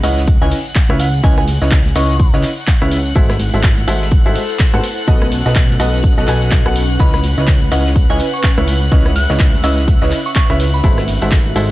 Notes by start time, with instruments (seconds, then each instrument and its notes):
Already playing: violin section F#5 F#6, impact
0.03 analog synth bass C#2, upright piano C#3 E4 B4 C#5 D#5, synth bell F#5, closed hi-hat, open hi-hat, ride, shaker
0.17 snare, closed hi-hat, tambourine, shaker
0.27 kick, closed hi-hat, ride, tambourine, shaker
0.41 analog synth bass C#2, upright piano C#3 E4 B4 C#5 D#5, synth bell G#5, tambourine, shaker
0.52 open hi-hat, ride, shaker
0.66 closed hi-hat, tambourine, shaker
0.75 kick, snare, clap, closed hi-hat, ride, tambourine, shaker
0.89 analog synth bass C#2, upright piano C#3 E4 B4 C#5 E5, cross-stick, tambourine, high conga, shaker
0.99 synth bell F#5, snare, closed hi-hat, open hi-hat, ride, shaker
1.14 closed hi-hat, tambourine, shaker
1.23 analog synth bass C#2, upright piano C#3 E4 B4 C#5 D#5, synth bell G#5, kick, closed hi-hat, ride, tambourine, shaker
1.37 synth bell G#5, cross-stick, closed hi-hat, tambourine, high conga, shaker
1.48 snare, closed hi-hat, open hi-hat, ride, high conga, shaker
1.61 analog synth bass C#2, upright piano C#3 E4 B4 C#5 D#5, snare, closed hi-hat, tambourine, shaker
1.71 kick, snare, clap, closed hi-hat, ride, tambourine, shaker
1.85 snare, closed hi-hat, tambourine, high conga
1.96 analog synth bass C#2, upright piano C#3 E4 B4 C#5 D#5, synth bell C#6, closed hi-hat, open hi-hat, ride, shaker
2.10 closed hi-hat, tambourine, shaker
2.20 kick, closed hi-hat, ride, shaker
2.33 analog synth bass C#2, upright piano C#3 E4 B4 C#5 D#5, snare, tambourine, shaker
2.43 clap, closed hi-hat, open hi-hat, ride, shaker
2.58 closed hi-hat, tambourine, shaker
2.67 kick, snare, clap, closed hi-hat, ride, tambourine, shaker
2.81 analog synth bass C#2, upright piano C#3 E4 B4 C#5 E5, cross-stick, tambourine, shaker
2.91 snare, closed hi-hat, open hi-hat, ride, shaker
3.05 closed hi-hat, tambourine, shaker
3.15 analog synth bass G#1, upright piano G#3 F#4 A4 C5 E5, analog synth pad E4, kick, closed hi-hat, ride, tambourine, shaker
3.29 cross-stick, snare, closed hi-hat, tambourine, high conga, shaker
3.39 snare, closed hi-hat, open hi-hat, ride, high conga, shaker
3.54 analog synth bass G#1, upright piano G#3 F#4 A4 C5 E5, closed hi-hat, tambourine, shaker
3.63 kick, snare, clap, closed hi-hat, ride, tambourine, shaker
3.77 analog synth pad A4, closed hi-hat, tambourine, high conga
3.88 analog synth bass G#1, upright piano G#3 F#4 A4 C5 E5, closed hi-hat, open hi-hat, ride, shaker
3.92 analog synth pad C5
4.02 snare, closed hi-hat, tambourine, shaker
4.11 kick, closed hi-hat, ride, tambourine, shaker
4.26 analog synth bass G#1, upright piano G#3 F#4 A4 C5 E5, tambourine, shaker
4.35 open hi-hat, ride, shaker
4.49 closed hi-hat, tambourine, shaker
4.59 kick, snare, clap, closed hi-hat, ride, shaker
4.73 analog synth bass G#2, upright piano B3 F#4 A4 C5 F#5, cross-stick, tambourine, high conga, shaker
4.83 analog synth pad C#4, snare, closed hi-hat, open hi-hat, ride, shaker
4.98 closed hi-hat, tambourine, shaker
5.07 analog synth bass B1, upright piano B3 F#4 A4 B4 D#5, kick, closed hi-hat, ride, tambourine, shaker
5.21 cross-stick, closed hi-hat, tambourine, high conga, shaker
5.31 snare, closed hi-hat, open hi-hat, ride, high conga, shaker
5.46 analog synth bass B1, upright piano B3 F#4 A4 B4 D#5, snare, closed hi-hat, tambourine, shaker
5.53 analog synth pad B4, kick, snare, clap, closed hi-hat, ride, tambourine, shaker
5.70 snare, closed hi-hat, tambourine, high conga
5.79 analog synth bass B1, upright piano B3 F#4 A4 B4 D#5, analog synth pad D#5, closed hi-hat, open hi-hat, ride, shaker
5.94 closed hi-hat, tambourine, shaker
6.03 kick, closed hi-hat, ride, tambourine, shaker
6.18 analog synth bass B1, upright piano B3 F#4 A4 B4 D#5, snare, tambourine, shaker
6.27 analog synth bass B1, upright piano B3 F#4 A4 B4 G#5, clap, closed hi-hat, open hi-hat, ride, shaker
6.41 closed hi-hat, tambourine, shaker
6.51 kick, snare, clap, closed hi-hat, ride, shaker
6.66 analog synth bass B1, upright piano B3 F#4 A4 B4 F#5, cross-stick, closed hi-hat, tambourine, shaker
6.75 snare, closed hi-hat, open hi-hat, ride, shaker
6.90 closed hi-hat, tambourine, shaker
6.99 analog synth bass C#2, upright piano C#3 E4 B4 C#5 D#5, synth bell B5, kick, closed hi-hat, ride, tambourine, shaker
7.14 synth bell B5, cross-stick, snare, closed hi-hat, tambourine, high conga, shaker
7.23 snare, closed hi-hat, open hi-hat, ride, high conga, shaker
7.38 analog synth bass C#2, upright piano C#3 E4 B4 C#5 D#5, closed hi-hat, tambourine, shaker
7.47 kick, snare, clap, closed hi-hat, ride, tambourine, shaker
7.61 closed hi-hat, tambourine, high conga
7.72 analog synth bass C#2, upright piano C#3 E4 B4 C#5 D#5, synth bell F#5, closed hi-hat, open hi-hat, ride, shaker
7.86 snare, closed hi-hat, tambourine, shaker
7.96 kick, closed hi-hat, ride, tambourine, shaker
8.10 analog synth bass C#2, upright piano C#3 E4 B4 C#5 D#5, synth bell G#5, tambourine, shaker
8.19 open hi-hat, ride, shaker
8.34 synth bell C#6, closed hi-hat, tambourine, shaker
8.43 kick, snare, clap, closed hi-hat, ride, tambourine, shaker
8.58 analog synth bass C#2, upright piano C#3 E4 B4 C#5 E5, cross-stick, tambourine, high conga, shaker
8.68 snare, closed hi-hat, open hi-hat, ride, shaker
8.72 analog synth pad E5
8.82 closed hi-hat, tambourine, shaker
8.92 analog synth bass C#2, upright piano C#3 E4 B4 C#5 D#5, kick, closed hi-hat, ride, tambourine, shaker
9.05 cross-stick, closed hi-hat, tambourine, high conga, shaker
9.15 synth bell F#6, snare, closed hi-hat, open hi-hat, ride, high conga, shaker
9.29 analog synth bass C#2, upright piano C#3 E4 B4 C#5 D#5, snare, closed hi-hat, tambourine, shaker
9.39 kick, snare, clap, closed hi-hat, ride, tambourine, shaker
9.53 snare, closed hi-hat, tambourine, high conga
9.64 analog synth bass C#2, upright piano C#3 E4 B4 C#5 D#5, synth bell E6, closed hi-hat, open hi-hat, ride, shaker
9.78 closed hi-hat, tambourine, shaker
9.87 kick, closed hi-hat, ride, tambourine, shaker
10.01 analog synth bass C#2, upright piano C#3 E4 B4 C#5 D#5, snare, tambourine, shaker
10.11 clap, closed hi-hat, open hi-hat, ride, shaker
10.25 synth bell C#6, closed hi-hat, tambourine, shaker
10.35 synth bell C#6, kick, snare, clap, closed hi-hat, ride, tambourine, shaker
10.50 analog synth bass C#2, upright piano C#3 E4 B4 C#5 E5, cross-stick, tambourine, shaker
10.60 snare, closed hi-hat, open hi-hat, ride, shaker
10.74 synth bell B5, closed hi-hat, tambourine, shaker
10.84 analog synth bass G#1, upright piano G#3 F#4 A4 C5 E5, analog synth pad F#4, kick, closed hi-hat, ride, tambourine, shaker
10.98 cross-stick, snare, closed hi-hat, tambourine, high conga, shaker
11.03 analog synth pad A4
11.08 snare, closed hi-hat, open hi-hat, ride, high conga, shaker
11.22 analog synth bass G#1, upright piano G#3 F#4 A4 C5 E5, closed hi-hat, tambourine, shaker
11.31 kick, snare, clap, closed hi-hat, ride, tambourine, shaker
11.46 closed hi-hat, tambourine, high conga
11.55 analog synth bass G#1, upright piano G#3 F#4 A4 C5 E5, closed hi-hat, open hi-hat, ride, shaker
11.60 analog synth pad C5